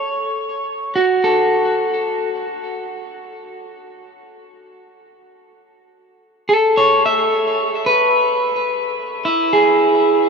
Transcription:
Already playing: C#5
0.96 F#4
1.24 A4
6.49 A4
6.77 C#5
7.06 E5
7.86 B4
9.25 E4
9.53 G#4

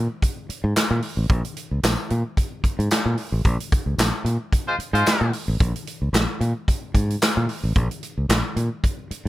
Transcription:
0.22 kick, closed hi-hat
0.49 muted fingered electric bass stroke, closed hi-hat
0.64 G#2
0.76 snare, clap, closed hi-hat, tambourine
0.91 A#2
1.02 open hi-hat
1.17 A1
1.29 A#1, kick, closed hi-hat
1.45 closed hi-hat
1.57 closed hi-hat
1.71 C#2
1.83 A#1, snare, clap, closed hi-hat, tambourine
2.10 A#2, closed hi-hat
2.37 kick, closed hi-hat
2.64 muted fingered electric bass stroke, kick, closed hi-hat
2.79 G#2, closed hi-hat
2.91 snare, clap, closed hi-hat, tambourine
3.06 A#2
3.18 open hi-hat
3.32 A1
3.45 A#1, kick, closed hi-hat
3.60 closed hi-hat
3.72 kick, closed hi-hat
3.86 C#2
3.98 A#1, snare, clap, closed hi-hat, tambourine
4.25 A#2, closed hi-hat
4.53 kick, closed hi-hat
4.68 G#3 F4 C5
4.79 muted fingered electric bass stroke, closed hi-hat
4.93 G#2 G#3 F4 C5, closed hi-hat
5.06 snare, clap, closed hi-hat, tambourine
5.21 A#2
5.33 open hi-hat
5.48 A1
5.60 A#1, kick, closed hi-hat
5.76 closed hi-hat
5.87 closed hi-hat
6.02 C#2
6.13 A#1, snare, clap, closed hi-hat, tambourine
6.41 A#2, closed hi-hat
6.68 kick, closed hi-hat
6.94 G#2, kick, closed hi-hat
7.10 closed hi-hat
7.22 snare, clap, closed hi-hat, tambourine
7.37 A#2
7.49 open hi-hat
7.64 A1
7.76 A#1, kick, closed hi-hat
7.91 closed hi-hat
8.03 closed hi-hat
8.18 C#2
8.29 A#1, snare, clap, closed hi-hat, tambourine
8.56 A#2, closed hi-hat
8.84 kick, closed hi-hat
9.11 muted fingered electric bass stroke, closed hi-hat

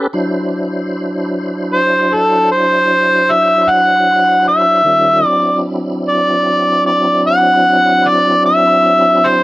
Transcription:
0.13 F#3 D4 E4 C5
1.73 C5
2.14 A4
2.52 C5
3.31 E5
3.69 F#5
4.48 E5
4.84 D#3 G3 C#4 F4
5.24 F#3 C4 D4 E4 D5
6.09 D5
6.86 D5
7.27 F#5
8.08 D5
8.46 E5
9.27 C5

